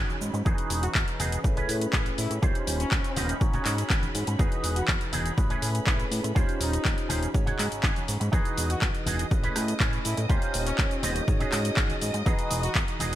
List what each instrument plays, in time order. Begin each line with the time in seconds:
Already playing: clean electric guitar C#4 F#4 G#4, tine electric piano C#4 D#4 F#4 G#4 C#5, violin section C#4 B5
0.10 high conga, cabasa, maracas
0.21 analog synth bass G#2, cabasa
0.33 analog synth bass G#2, muted clean electric guitar stroke, cabasa, maracas
0.45 analog synth bass E2, tine electric piano E3 D#4 F#4 G#4 B4, violin section C#4 B5, clean electric guitar D#4 F#4 G#4, kick, cabasa, maracas
0.58 closed hi-hat, cabasa
0.70 analog synth bass E1, open hi-hat, cabasa
0.83 horn section F#4, closed hi-hat, cabasa, maracas
0.95 analog synth bass E2, horn section F#4, kick, clap, cabasa
1.08 closed hi-hat, cabasa
1.19 analog synth bass E1, clean electric guitar D#4 F#4 G#4, open hi-hat, high conga, low conga, cabasa
1.32 closed hi-hat, cabasa
1.43 analog synth bass A1, tine electric piano A3 C#4 E4 G#4 B4, kick, cabasa
1.56 clean electric guitar C#4 G#4 B4, closed hi-hat, low conga, cabasa, maracas
1.69 analog synth bass A2, open hi-hat, cabasa
1.81 closed hi-hat, cabasa, maracas
1.93 analog synth bass A1, clean electric guitar C#4 G#4 B4, kick, clap, cabasa
2.06 closed hi-hat, cabasa
2.18 analog synth bass A2, horn section E4, open hi-hat, cabasa
2.30 analog synth bass A2, muted clean electric guitar stroke, closed hi-hat, cabasa, maracas
2.42 analog synth bass D#2, tine electric piano C#4 D#4 F4 G4 C5, clean electric guitar C#4 F4 G4 C5, kick, cabasa, maracas
2.55 closed hi-hat, cabasa, maracas
2.67 analog synth bass D#1, open hi-hat, cabasa
2.80 horn section C#4, closed hi-hat, cabasa, maracas
2.91 analog synth bass D#2, kick, clap, cabasa
3.04 closed hi-hat, cabasa
3.16 analog synth bass D#1, clean electric guitar C#4 F4 G4 D#5, open hi-hat, high conga, low conga, cabasa
3.29 closed hi-hat, cabasa, maracas
3.40 analog synth bass G#1, tine electric piano C#4 D#4 F#4 G#4 C#5, kick, cabasa, maracas
3.53 clean electric guitar C#4 F#4 G#4, closed hi-hat, low conga, cabasa, maracas
3.65 analog synth bass G#2, clap, open hi-hat, cabasa
3.78 closed hi-hat, cabasa, maracas
3.90 analog synth bass G#1, clean electric guitar C#4 F#4 B4, kick, clap, cabasa
4.03 closed hi-hat, high conga, cabasa, maracas
4.15 analog synth bass G#2, open hi-hat, cabasa
4.27 analog synth bass G#2, muted clean electric guitar stroke, closed hi-hat, cabasa, maracas
4.39 analog synth bass E2, tine electric piano E3 D#4 F#4 G#4 B4, clean electric guitar D#4 F#4 G#4, kick, cabasa, maracas
4.52 closed hi-hat, cabasa, maracas
4.64 analog synth bass E1, open hi-hat, cabasa
4.76 horn section F#4, closed hi-hat, cabasa, maracas
4.88 analog synth bass E2, horn section F#4, kick, clap, cabasa
5.01 closed hi-hat, cabasa
5.12 analog synth bass E1, clean electric guitar D#4 F#4 G#4, open hi-hat, high conga, low conga, cabasa
5.25 closed hi-hat, cabasa, maracas
5.37 analog synth bass A1, tine electric piano A3 C#4 E4 G#4 B4, kick, cabasa, maracas
5.50 clean electric guitar C#4 G#4 B4, closed hi-hat, low conga, cabasa, maracas
5.62 analog synth bass A2, open hi-hat, cabasa
5.75 closed hi-hat, cabasa, maracas
5.86 analog synth bass A1, clean electric guitar C#4 G#4 B4, horn section E4, kick, clap, cabasa
6.00 closed hi-hat, cabasa
6.11 analog synth bass A2, open hi-hat, cabasa
6.23 analog synth bass A2, muted clean electric guitar stroke, closed hi-hat, cabasa, maracas
6.35 analog synth bass D#2, tine electric piano C#4 D#4 F4 G4 C5, clean electric guitar C#4 F4 G4 C5, kick, cabasa, maracas
6.49 closed hi-hat, cabasa, maracas
6.61 analog synth bass D#1, horn section D#4, open hi-hat, cabasa
6.73 closed hi-hat, cabasa, maracas
6.85 analog synth bass D#2, kick, clap, cabasa
6.98 closed hi-hat, cabasa, maracas
7.09 analog synth bass D#1, clean electric guitar C#4 F4 G4 C5, open hi-hat, high conga, low conga, cabasa
7.22 closed hi-hat, cabasa, maracas
7.33 analog synth bass G#1, tine electric piano C#4 D#4 F#4 G#4 C#5, kick, cabasa, maracas
7.46 clean electric guitar C#4 F#4 G#4, closed hi-hat, low conga, cabasa, maracas
7.59 analog synth bass G#2, clap, open hi-hat, cabasa
7.71 analog synth bass G#1, closed hi-hat, cabasa, maracas
7.83 analog synth bass G#1, clean electric guitar C#4 F#4 G#4, kick, clap, cabasa
7.96 closed hi-hat, high conga, cabasa, maracas
8.08 analog synth bass G#2, open hi-hat, cabasa
8.20 analog synth bass G#2, muted clean electric guitar stroke, closed hi-hat, cabasa, maracas
8.32 analog synth bass E2, tine electric piano E3 D#4 F#4 G#4 B4, clean electric guitar D#4 F#4 G#4, violin section D#5 D#6, kick, cabasa, maracas
8.45 closed hi-hat, cabasa, maracas
8.58 analog synth bass E1, open hi-hat, cabasa
8.70 horn section F#4, closed hi-hat, cabasa, maracas
8.82 analog synth bass E2, horn section F#4, kick, clap, cabasa
8.94 closed hi-hat, cabasa, maracas
9.06 analog synth bass E1, clean electric guitar D#4 F#4 G#4, open hi-hat, high conga, low conga, cabasa
9.19 closed hi-hat, cabasa, maracas
9.31 analog synth bass A1, tine electric piano A3 C#4 E4 G#4 B4, kick, cabasa, maracas
9.43 clean electric guitar C#4 G#4 B4, closed hi-hat, low conga, cabasa, maracas
9.56 analog synth bass A2, cross-stick, open hi-hat, cabasa
9.68 closed hi-hat, cabasa, maracas
9.80 analog synth bass A1, clean electric guitar C#4 G#4 B4, kick, clap, cabasa
9.93 closed hi-hat, cabasa
10.05 analog synth bass A2, horn section E4, open hi-hat, cabasa
10.17 analog synth bass A2, muted clean electric guitar stroke, closed hi-hat, cabasa, maracas
10.29 analog synth bass D#2, clean electric guitar C#4 F4 G4 C5, tine electric piano C#4 D#4 F4 G4 C5, kick, cabasa, maracas
10.42 closed hi-hat, cabasa, maracas
10.54 analog synth bass D#1, open hi-hat, cabasa
10.67 horn section C#4, closed hi-hat, cabasa, maracas
10.78 analog synth bass D#2, kick, clap, cabasa
10.91 closed hi-hat, cabasa, maracas
11.03 analog synth bass D#1, clean electric guitar C#4 F4 G4 D#5, open hi-hat, high conga, low conga, cabasa
11.16 closed hi-hat, cabasa, maracas
11.27 analog synth bass G#1, tine electric piano C#4 D#4 F#4 G#4 C#5, kick, cabasa, maracas
11.40 clean electric guitar C#4 F#4 G#4, closed hi-hat, low conga, cabasa, maracas
11.52 analog synth bass G#2, cross-stick, clap, open hi-hat, cabasa
11.65 closed hi-hat, cabasa, maracas
11.77 analog synth bass G#1, clean electric guitar C#4 F#4 G#4, kick, clap, cabasa
11.90 closed hi-hat, high conga, cabasa, maracas
12.02 analog synth bass G#2, open hi-hat, cabasa
12.14 analog synth bass G#2, muted clean electric guitar stroke, closed hi-hat, cabasa, maracas
12.25 analog synth bass E2, tine electric piano E3 D#4 F#4 G#4 B4, clean electric guitar D#4 F#4 G#4, kick, cabasa, maracas
12.39 closed hi-hat, cabasa, maracas
12.51 analog synth bass E1, open hi-hat, cabasa
12.63 horn section F#4, closed hi-hat, cabasa, maracas
12.75 analog synth bass E2, horn section F#4, kick, clap, cabasa
12.87 closed hi-hat, cabasa, maracas
13.00 analog synth bass E1, clean electric guitar D#4 F#4 G#4, open hi-hat, high conga, low conga, cabasa